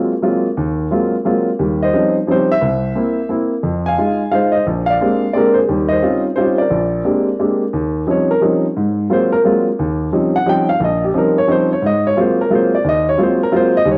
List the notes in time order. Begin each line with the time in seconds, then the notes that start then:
Already playing: F#3 G#3 A#3 C4 F4
0.22 F#3 G#3 A#3 C4 F4
0.57 D#2
0.91 F#3 G#3 A#3 C4 F4
1.25 F#3 G#3 A#3 C4 F4
1.59 D#2 G3
1.83 C5 D#5
1.93 F3 G3 C4 C#4 D#4
2.27 F3 G3 C4 C#4 D#4
2.31 G4 C5
2.51 C5 E5
2.61 C2
2.95 A#3 C4 E4
3.29 A#3 C4 E4
3.63 F2
3.86 F5 G#5
3.98 G#3 D#4 F4
4.31 G#3 D#4 F4 C5 F5
4.52 C5 D#5
4.67 A#1
4.86 F5
4.90 D5
5.01 G#3 A#3 C4 D4 G4
5.33 G#3 A#3 C4 D4 G4 D5
5.38 A#4
5.54 C5
5.58 G#4
5.69 D#2 G3
5.88 C5 D#5
6.02 G3 C4 C#4 D#4 F4
6.36 G3 C4 C#4 D#4 F4 G4 C5
6.58 A#4 D5
6.71 A#1
7.04 G#3 A#3 C4 D4 G4
7.39 G#3 A#3 C4 D4 G4
7.73 D#2
8.07 F3 G3 C4 C#4 D#4
8.11 C#5
8.31 A#4
8.41 F3 G3 C4 C#4 D#4
8.77 G#2
9.10 F#3 G#3 A#3 C4 F4 C5
9.32 A#4
9.44 F#3 G#3 A#3 C4 F4
9.79 D#2
10.12 F3 G3 C4 C#4 D#4
10.36 F#5
10.46 F3 G3 C4 C#4 D#4 G5
10.69 F5
10.80 A#1
10.84 D#5
11.04 G4
11.14 F3 G3 C4 C#4 D#4
11.18 A#4
11.38 C#5
11.47 F3 G3 C4 C#4 D#4
11.52 C5
11.73 C#5
11.82 G#2
11.86 D#5
12.07 C#5
12.16 F#3 G#3 A#3 C4 F4
12.21 C5
12.41 A#4
12.50 F#3 G#3 A#3 C4 F4
12.55 C5
12.75 D5
12.84 D#2
12.89 D#5
13.09 C#5
13.17 F#3 G#3 A#3 C4 F4
13.23 C5
13.43 A#4
13.52 F#3 G#3 A#3 C4 F4
13.56 C5
13.77 D#5
13.85 D#2 G3
13.91 C#5